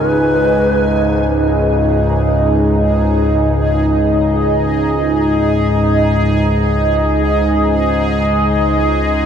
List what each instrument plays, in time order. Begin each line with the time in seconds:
Already playing: synth drone C#2 G#2, analog synth pad D#4 C#5 G#5, synth texture G#5
0.00 shakuhachi B4
1.04 synth texture G#4
2.33 analog synth pad D#5